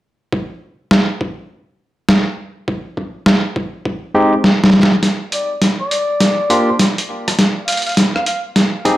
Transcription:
0.33 kick loud
0.91 snare loud
1.21 kick loud
2.09 snare loud
2.68 kick loud
2.97 kick medium
3.26 snare loud
3.56 kick loud
3.85 kick loud
4.14 4.34 G#3 loud
4.14 4.34 C4 medium
4.14 4.34 D#4 medium
4.14 4.34 G4 loud
4.44 snare medium
4.64 snare medium
4.70 snare medium
4.73 snare soft
4.80 snare soft
4.83 snare medium
4.92 snare soft
5.03 snare soft
5.03 closed hi-hat medium
5.32 5.52 D5 medium
5.32 closed hi-hat medium
5.62 snare soft
5.62 closed hi-hat medium
5.81 6.48 D5 medium
5.91 closed hi-hat medium
6.20 snare soft
6.20 closed hi-hat medium
6.50 6.69 A#3 loud
6.50 6.69 D4 medium
6.50 6.69 F4 medium
6.50 6.69 G4 loud
6.50 6.62 C5 medium
6.50 closed hi-hat medium
6.69 6.76 C5 medium
6.79 snare medium
6.79 closed hi-hat medium
6.98 closed hi-hat medium
7.28 cross-stick soft
7.28 closed hi-hat medium
7.39 snare medium
7.39 closed hi-hat medium
7.68 7.80 F5 medium
7.68 closed hi-hat medium
7.72 closed hi-hat medium
7.77 closed hi-hat soft
7.82 closed hi-hat soft
7.87 7.93 F5 medium
7.87 closed hi-hat soft
7.89 closed hi-hat soft
7.92 closed hi-hat soft
7.94 snare medium
7.94 closed hi-hat soft
7.97 closed hi-hat medium
8.16 8.23 F5 medium
8.16 cross-stick soft
8.26 8.39 F5 medium
8.26 closed hi-hat medium
8.56 snare medium
8.56 closed hi-hat medium
8.85 8.97 C4 medium
8.85 8.97 D#4 medium
8.85 8.97 G4 medium
8.85 8.97 G#4 loud
8.85 cross-stick medium
8.85 closed hi-hat medium

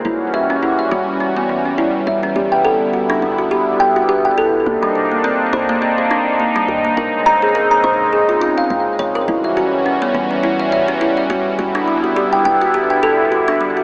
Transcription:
0.05 0.17 E1 medium
0.05 2.33 E3 medium
0.05 4.62 G3 medium
0.05 2.33 C#4 medium
0.05 0.16 E4 medium
0.05 2.33 F#4 medium
0.34 0.40 E5 loud
0.50 0.62 C#4 medium
0.63 0.74 E4 medium
0.79 0.87 E5 medium
0.91 1.51 E1 medium
0.91 1.02 F#4 loud
1.20 1.31 C#4 medium
1.36 1.45 B3 medium
1.49 2.01 B1 medium
1.49 1.65 E3 medium
1.65 1.74 C#4 medium
1.78 1.89 E4 medium
2.07 2.29 G1 medium
2.07 2.13 E5 medium
2.23 2.35 C#4 loud
2.36 2.47 G1 loud
2.36 4.64 D3 medium
2.36 4.64 B3 medium
2.36 4.64 E4 medium
2.36 2.47 G4 medium
2.52 2.60 G5 medium
2.65 2.76 A4 medium
2.93 3.04 F#4 medium
3.10 3.18 D4 loud
3.22 3.74 G1 medium
3.22 3.38 G3 medium
3.38 3.47 F#4 medium
3.51 3.62 G4 loud
3.80 3.87 G5 loud
3.96 4.08 F#4 medium
4.09 4.20 G4 loud
4.25 4.34 G5 medium
4.38 4.49 A4 loud
4.66 4.78 C2 medium
4.66 6.95 A#3 medium
4.66 4.77 A#3 medium
4.66 6.95 C4 medium
4.66 6.95 D4 medium
4.66 9.24 D#4 medium
4.83 4.91 G3 loud
4.95 5.11 C3 medium
5.11 5.20 A#3 medium
5.24 5.35 C4 loud
5.53 6.12 C2 medium
5.53 5.60 C5 loud
5.69 5.81 A#3 loud
5.82 5.93 C4 medium
5.98 6.07 C5 medium
6.11 6.63 G1 medium
6.11 6.22 D4 loud
6.40 6.51 A#3 medium
6.56 6.64 G3 medium
6.68 6.90 D#2 medium
6.68 6.84 C3 medium
6.85 6.93 A#3 medium
6.97 7.09 A#1 medium
6.97 9.26 C#3 medium
6.97 9.26 G#3 medium
6.97 9.26 C4 medium
6.97 7.08 A#4 medium
7.26 7.33 A#5 loud
7.42 7.54 G#4 medium
7.55 7.66 A#4 loud
7.71 7.80 A#5 medium
7.84 8.36 A#1 medium
7.84 7.95 C5 loud
8.13 8.24 G#4 medium
8.29 8.37 F4 medium
8.41 8.52 F4 loud
8.58 8.66 F5 medium
8.70 8.92 F1 medium
8.70 8.81 F5 medium
8.99 9.11 F1 medium
8.99 9.10 C#5 loud
9.15 9.27 A#4 loud
9.28 9.40 E1 loud
9.28 11.56 E3 medium
9.28 13.84 G3 medium
9.28 11.56 C#4 medium
9.28 9.39 E4 medium
9.28 11.56 F#4 medium
9.44 9.53 E5 medium
9.57 9.68 F#4 medium
9.86 9.97 C#4 medium
10.02 10.10 B3 loud
10.15 10.74 E1 medium
10.15 10.30 E3 medium
10.31 10.39 C#4 medium
10.43 10.54 E4 loud
10.59 10.68 E5 medium
10.72 11.24 B1 medium
10.72 10.79 E5 loud
10.88 11.00 C#4 medium
11.01 11.12 E4 loud
11.17 11.26 E5 medium
11.30 11.52 G1 medium
11.30 11.41 F#4 loud
11.59 11.71 G1 loud
11.59 13.84 D3 medium
11.59 13.84 B3 medium
11.59 13.84 E4 medium
11.59 11.70 F#4 medium
11.75 11.84 D4 loud
11.88 12.03 G3 medium
12.04 12.12 F#4 medium
12.16 12.27 G4 loud
12.33 12.41 G5 medium
12.45 12.97 G1 medium
12.45 12.52 G5 loud
12.61 12.74 F#4 loud
12.74 12.85 G4 loud
12.90 12.99 G5 medium
13.03 13.14 A4 loud
13.32 13.43 F#4 medium
13.48 13.57 D4 loud
13.61 13.76 G3 medium
13.77 13.84 F#4 medium

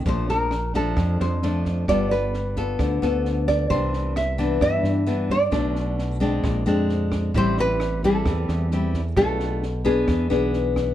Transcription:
0.06 0.93 A#1 medium
0.06 0.95 A#2 medium
0.06 0.51 F3 soft
0.06 0.51 A3 soft
0.06 0.51 D4 medium
0.06 0.28 C5 medium
0.06 kick medium
0.06 snare soft
0.29 0.76 A#4 medium
0.29 snare soft
0.51 cross-stick medium
0.51 snare soft
0.74 1.39 F3 medium
0.74 1.39 A3 medium
0.74 1.39 D4 medium
0.74 1.21 A4 medium
0.74 kick soft
0.74 snare soft
0.97 1.18 F2 medium
0.97 1.86 F2 soft
0.97 kick medium
0.97 cross-stick medium
0.97 snare soft
1.20 1.84 F2 medium
1.20 1.85 C5 medium
1.20 snare soft
1.42 1.85 F3 medium
1.42 1.85 A3 medium
1.42 1.85 D4 medium
1.42 snare soft
1.65 kick soft
1.65 snare soft
1.88 2.75 G1 medium
1.88 2.77 G3 medium
1.88 2.34 B3 medium
1.88 2.34 F4 soft
1.88 2.34 A4 medium
1.88 2.11 D5 medium
1.88 kick medium
1.88 cross-stick medium
1.88 snare soft
2.11 3.48 B4 medium
2.11 snare soft
2.34 snare soft
2.56 2.98 B3 medium
2.56 2.99 F4 medium
2.56 2.99 A4 medium
2.56 kick soft
2.56 snare soft
2.79 3.00 D2 medium
2.79 3.68 D3 soft
2.79 kick medium
2.79 cross-stick medium
2.79 snare soft
3.02 3.67 D2 medium
3.02 3.67 B3 medium
3.02 3.67 F4 soft
3.02 3.67 A4 medium
3.02 snare soft
3.25 snare soft
3.48 3.70 D5 medium
3.48 kick soft
3.48 cross-stick soft
3.48 snare soft
3.70 4.57 C2 medium
3.70 4.59 C3 soft
3.70 4.16 E3 soft
3.70 4.16 D4 medium
3.70 4.16 C5 medium
3.70 kick medium
3.70 snare soft
3.93 snare soft
4.16 4.59 E5 medium
4.16 cross-stick medium
4.16 snare soft
4.38 5.03 E3 medium
4.38 5.03 B3 medium
4.38 5.03 D4 medium
4.38 kick soft
4.38 snare soft
4.61 5.50 G2 medium
4.61 4.83 G2 medium
4.61 5.31 E5 medium
4.61 kick medium
4.61 cross-stick medium
4.61 snare soft
4.83 5.48 G2 medium
4.83 snare soft
5.07 5.36 E3 medium
5.07 5.36 B3 medium
5.07 5.36 D4 medium
5.07 snare soft
5.30 5.95 D5 medium
5.30 kick soft
5.30 snare soft
5.51 6.39 B1 medium
5.51 6.41 B2 soft
5.51 6.17 F#3 soft
5.51 6.17 A3 soft
5.51 6.17 D4 medium
5.51 kick medium
5.51 cross-stick medium
5.51 snare soft
5.75 snare soft
5.99 snare soft
6.20 6.62 G#3 medium
6.20 6.63 C4 medium
6.20 6.63 D4 medium
6.20 kick soft
6.20 snare soft
6.44 6.65 A#1 medium
6.44 7.32 A#2 soft
6.44 kick medium
6.44 cross-stick medium
6.44 snare soft
6.66 7.31 F2 medium
6.66 7.31 G#3 medium
6.66 7.31 C4 medium
6.66 7.31 D4 medium
6.66 snare soft
6.89 snare soft
7.12 kick soft
7.12 cross-stick medium
7.12 snare soft
7.34 8.22 A1 medium
7.34 8.23 A2 medium
7.34 7.99 G3 soft
7.34 7.99 C4 soft
7.34 8.00 E4 medium
7.34 7.57 C5 medium
7.34 kick medium
7.34 snare soft
7.57 8.01 B4 medium
7.57 snare soft
7.80 cross-stick medium
7.80 snare soft
8.03 8.68 G3 medium
8.03 8.68 C4 medium
8.03 8.68 E4 medium
8.03 9.16 A4 medium
8.03 kick soft
8.03 snare soft
8.26 8.47 E2 medium
8.26 9.15 E3 medium
8.26 kick medium
8.26 cross-stick medium
8.26 snare soft
8.49 9.13 E2 medium
8.49 snare soft
8.71 9.01 G3 medium
8.71 9.01 C4 soft
8.71 9.02 E4 medium
8.71 snare soft
8.94 kick soft
8.94 snare soft
9.17 10.04 B1 medium
9.17 10.06 B2 soft
9.17 9.62 A3 soft
9.17 9.63 D4 soft
9.17 9.63 F4 soft
9.17 9.81 A4 medium
9.17 kick medium
9.17 cross-stick medium
9.17 snare soft
9.40 snare soft
9.63 snare soft
9.85 10.27 B3 medium
9.85 10.27 D4 soft
9.85 10.50 G#4 medium
9.85 10.27 G#4 medium
9.85 kick soft
9.85 snare soft
10.08 10.29 E2 medium
10.08 10.94 E3 soft
10.08 kick medium
10.08 cross-stick medium
10.08 snare soft
10.30 10.94 B1 medium
10.30 10.94 B3 medium
10.30 10.94 D4 soft
10.30 10.94 G#4 medium
10.30 snare soft
10.53 snare soft
10.76 kick soft
10.76 cross-stick soft
10.76 snare soft

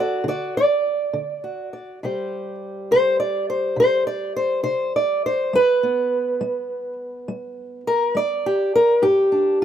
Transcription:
0.00 0.27 F#4 medium
0.00 0.27 D5 medium
0.24 0.78 D3 medium
0.28 0.56 F#4 medium
0.28 0.56 D5 medium
0.57 1.72 D5 loud
1.13 1.66 D3 medium
1.44 1.98 F#4 soft
1.73 1.98 D5 soft
2.03 2.55 C3 medium
2.03 5.52 G3 medium
2.03 5.55 G4 medium
2.03 2.91 C5 soft
2.91 3.43 C3 medium
2.91 3.19 C5 loud
3.20 3.48 D5 medium
3.50 3.78 C5 medium
3.76 4.29 C3 medium
3.76 4.06 C5 loud
4.07 4.36 D5 medium
4.36 4.62 C5 medium
4.63 5.16 C3 medium
4.63 4.93 C5 medium
4.96 5.24 D5 medium
5.26 5.54 C5 medium
5.53 6.05 G3 medium
5.53 7.29 B4 loud
5.83 9.00 B3 soft
6.41 6.93 G3 medium
7.28 7.80 G3 medium
7.87 8.16 A#4 loud
8.15 8.67 G3 medium
8.15 9.02 D5 medium
8.46 8.74 G4 medium
8.75 9.04 A#4 loud
9.02 9.55 G2 medium
9.02 9.65 G4 medium
9.32 9.61 D4 soft

